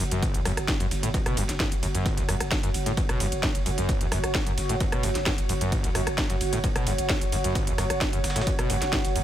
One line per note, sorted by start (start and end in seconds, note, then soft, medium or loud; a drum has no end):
0.00 0.11 F#1 loud
0.00 9.24 F#4 medium
0.00 9.24 C#5 medium
0.00 9.24 F#5 medium
0.00 closed hi-hat medium
0.11 0.22 F#1 medium
0.11 0.24 F#2 medium
0.11 closed hi-hat medium
0.11 ride medium
0.22 0.36 F#1 loud
0.22 kick loud
0.22 closed hi-hat loud
0.22 closed hi-hat medium
0.22 ride medium
0.34 0.45 F#1 medium
0.34 0.40 F#2 medium
0.34 closed hi-hat medium
0.34 ride medium
0.45 0.56 F#1 loud
0.45 0.52 F#2 loud
0.45 cross-stick medium
0.45 closed hi-hat medium
0.45 open hi-hat loud
0.45 ride medium
0.57 0.68 F#1 medium
0.57 cross-stick medium
0.57 closed hi-hat medium
0.57 ride medium
0.68 kick loud
0.68 snare loud
0.68 closed hi-hat medium
0.68 ride medium
0.80 0.90 F#1 medium
0.80 0.86 F#2 medium
0.80 closed hi-hat soft
0.80 closed hi-hat medium
0.80 ride medium
0.91 1.02 F#1 loud
0.91 snare medium
0.91 closed hi-hat medium
0.91 open hi-hat loud
0.91 ride medium
1.03 1.14 F#1 medium
1.03 1.09 A2 loud
1.03 closed hi-hat medium
1.03 ride medium
1.14 1.18 F#2 loud
1.14 kick loud
1.14 closed hi-hat medium
1.14 ride medium
1.26 1.36 F#1 medium
1.26 1.38 B2 loud
1.26 cross-stick medium
1.26 closed hi-hat medium
1.26 ride medium
1.37 1.48 F#1 loud
1.37 1.43 F#2 loud
1.37 closed hi-hat medium
1.37 open hi-hat loud
1.37 ride medium
1.49 1.60 F#1 medium
1.49 snare soft
1.49 closed hi-hat soft
1.49 closed hi-hat medium
1.49 ride medium
1.60 1.64 F#2 loud
1.60 kick loud
1.60 snare loud
1.60 closed hi-hat medium
1.60 ride medium
1.72 1.82 F#1 medium
1.72 closed hi-hat medium
1.72 ride medium
1.83 1.94 F#1 loud
1.83 1.87 F#2 medium
1.83 closed hi-hat medium
1.83 open hi-hat medium
1.83 ride medium
1.94 2.05 F#1 medium
1.94 2.07 F#2 medium
1.94 closed hi-hat medium
1.94 ride medium
2.06 2.19 F#1 loud
2.06 kick loud
2.06 closed hi-hat medium
2.06 closed hi-hat loud
2.06 ride medium
2.17 2.28 F#1 medium
2.17 2.24 F#2 medium
2.17 snare soft
2.17 closed hi-hat medium
2.17 ride medium
2.28 2.40 F#1 loud
2.28 2.35 F#2 loud
2.28 cross-stick medium
2.28 closed hi-hat medium
2.28 open hi-hat loud
2.28 ride medium
2.40 2.51 F#1 medium
2.40 cross-stick medium
2.40 closed hi-hat medium
2.40 ride medium
2.51 kick loud
2.51 snare loud
2.51 closed hi-hat medium
2.51 ride medium
2.63 2.74 F#1 medium
2.63 2.69 F#2 medium
2.63 snare medium
2.63 closed hi-hat medium
2.63 ride medium
2.74 2.86 F#1 loud
2.74 closed hi-hat medium
2.74 open hi-hat loud
2.74 ride medium
2.86 2.97 F#1 medium
2.86 2.92 A2 loud
2.86 closed hi-hat medium
2.86 closed hi-hat soft
2.86 ride medium
2.97 3.01 F#2 loud
2.97 kick loud
2.97 closed hi-hat medium
2.97 ride medium
3.09 3.20 F#1 medium
3.09 3.22 B2 loud
3.09 cross-stick medium
3.09 closed hi-hat medium
3.09 ride medium
3.20 3.31 F#1 loud
3.20 3.27 F#2 loud
3.20 closed hi-hat medium
3.20 open hi-hat loud
3.20 ride medium
3.32 3.43 F#1 medium
3.32 closed hi-hat medium
3.32 ride medium
3.43 3.47 F#2 loud
3.43 kick loud
3.43 snare loud
3.43 closed hi-hat medium
3.43 ride medium
3.55 3.65 F#1 medium
3.55 closed hi-hat medium
3.55 ride medium
3.66 3.77 F#1 loud
3.66 3.70 F#2 medium
3.66 closed hi-hat medium
3.66 open hi-hat medium
3.66 ride medium
3.78 3.89 F#1 medium
3.78 3.90 F#2 medium
3.78 closed hi-hat medium
3.78 ride medium
3.89 4.02 F#1 loud
3.89 kick loud
3.89 closed hi-hat medium
3.89 ride medium
4.01 4.11 F#1 medium
4.01 4.07 F#2 medium
4.01 closed hi-hat medium
4.01 ride medium
4.12 4.23 F#1 loud
4.12 4.18 F#2 loud
4.12 cross-stick medium
4.12 closed hi-hat medium
4.12 open hi-hat loud
4.12 ride medium
4.24 4.35 F#1 medium
4.24 cross-stick medium
4.24 closed hi-hat medium
4.24 ride medium
4.35 kick loud
4.35 snare loud
4.35 closed hi-hat medium
4.35 ride medium
4.46 4.57 F#1 medium
4.46 4.53 F#2 medium
4.46 closed hi-hat medium
4.46 closed hi-hat soft
4.46 ride medium
4.58 4.69 F#1 loud
4.58 snare medium
4.58 closed hi-hat medium
4.58 open hi-hat loud
4.58 ride medium
4.69 4.80 F#1 medium
4.69 4.75 A2 loud
4.69 closed hi-hat medium
4.69 ride medium
4.80 4.84 F#2 loud
4.80 kick loud
4.80 closed hi-hat medium
4.80 ride medium
4.92 5.03 F#1 medium
4.92 5.05 B2 loud
4.92 cross-stick loud
4.92 closed hi-hat medium
4.92 ride medium
5.03 5.15 F#1 loud
5.03 5.10 F#2 loud
5.03 closed hi-hat medium
5.03 open hi-hat loud
5.03 ride medium
5.15 5.26 F#1 medium
5.15 snare soft
5.15 closed hi-hat medium
5.15 closed hi-hat soft
5.15 ride medium
5.26 5.30 F#2 loud
5.26 kick loud
5.26 snare loud
5.26 closed hi-hat medium
5.26 ride medium
5.38 5.49 F#1 medium
5.38 closed hi-hat medium
5.38 ride medium
5.49 5.60 F#1 loud
5.49 5.53 F#2 medium
5.49 closed hi-hat medium
5.49 open hi-hat medium
5.49 ride medium
5.61 5.72 F#1 medium
5.61 5.74 F#2 medium
5.61 closed hi-hat medium
5.61 ride medium
5.72 5.85 F#1 loud
5.72 kick loud
5.72 closed hi-hat medium
5.72 ride medium
5.84 5.94 F#1 medium
5.84 5.90 F#2 medium
5.84 snare soft
5.84 closed hi-hat medium
5.84 ride medium
5.95 6.06 F#1 loud
5.95 6.01 F#2 loud
5.95 cross-stick medium
5.95 closed hi-hat medium
5.95 open hi-hat loud
5.95 ride medium
6.07 6.18 F#1 medium
6.07 cross-stick medium
6.07 closed hi-hat medium
6.07 ride medium
6.18 kick loud
6.18 snare loud
6.18 closed hi-hat medium
6.18 ride medium
6.30 6.40 F#1 medium
6.30 6.36 F#2 medium
6.30 snare medium
6.30 closed hi-hat medium
6.30 ride medium
6.41 6.52 F#1 loud
6.41 closed hi-hat medium
6.41 open hi-hat medium
6.41 ride medium
6.53 6.63 F#1 medium
6.53 6.59 A2 loud
6.53 closed hi-hat medium
6.53 closed hi-hat soft
6.53 ride medium
6.64 6.68 F#2 loud
6.64 kick loud
6.64 closed hi-hat medium
6.64 ride medium
6.76 6.86 F#1 medium
6.76 6.88 B2 loud
6.76 cross-stick medium
6.76 closed hi-hat medium
6.76 ride medium
6.87 6.98 F#1 loud
6.87 6.93 F#2 loud
6.87 closed hi-hat medium
6.87 open hi-hat loud
6.87 ride medium
6.98 7.09 F#1 medium
6.98 closed hi-hat medium
6.98 ride medium
7.09 7.13 F#2 loud
7.09 kick loud
7.09 snare loud
7.09 closed hi-hat medium
7.09 ride medium
7.21 7.32 F#1 medium
7.21 closed hi-hat medium
7.21 ride medium
7.32 7.44 F#1 loud
7.32 7.36 F#2 medium
7.32 closed hi-hat medium
7.32 open hi-hat medium
7.32 ride medium
7.44 7.55 F#1 medium
7.44 7.57 F#2 medium
7.44 closed hi-hat medium
7.44 ride medium
7.55 7.69 F#1 loud
7.55 kick loud
7.55 closed hi-hat medium
7.55 ride medium
7.67 7.78 F#1 medium
7.67 7.73 F#2 medium
7.67 closed hi-hat medium
7.67 ride medium
7.78 7.89 F#1 loud
7.78 7.85 F#2 loud
7.78 cross-stick medium
7.78 closed hi-hat medium
7.78 open hi-hat medium
7.78 ride medium
7.90 8.01 F#1 medium
7.90 cross-stick medium
7.90 closed hi-hat medium
7.90 ride medium
8.01 kick loud
8.01 snare loud
8.01 closed hi-hat medium
8.01 ride medium
8.13 8.23 F#1 medium
8.13 8.19 F#2 medium
8.13 closed hi-hat medium
8.13 ride medium
8.24 8.35 F#1 loud
8.24 snare medium
8.24 closed hi-hat medium
8.24 open hi-hat medium
8.24 ride medium
8.30 snare medium
8.30 closed hi-hat medium
8.36 8.47 F#1 medium
8.36 8.42 A2 loud
8.36 snare medium
8.36 closed hi-hat medium
8.36 ride medium
8.41 snare medium
8.41 closed hi-hat medium
8.47 8.51 F#2 loud
8.47 kick loud
8.47 closed hi-hat medium
8.47 closed hi-hat loud
8.47 ride medium
8.59 8.69 F#1 medium
8.59 8.71 B2 loud
8.59 cross-stick medium
8.59 closed hi-hat medium
8.59 ride medium
8.70 8.81 F#1 loud
8.70 8.76 F#2 loud
8.70 closed hi-hat medium
8.70 open hi-hat loud
8.70 ride medium
8.82 8.93 F#1 medium
8.82 snare soft
8.82 closed hi-hat medium
8.82 ride medium
8.93 8.97 F#2 loud
8.93 kick loud
8.93 snare loud
8.93 closed hi-hat medium
8.93 ride medium
9.05 9.15 F#1 medium
9.05 closed hi-hat medium
9.05 ride medium
9.16 9.24 F#1 loud
9.16 9.20 F#2 medium
9.16 open hi-hat medium
9.16 ride medium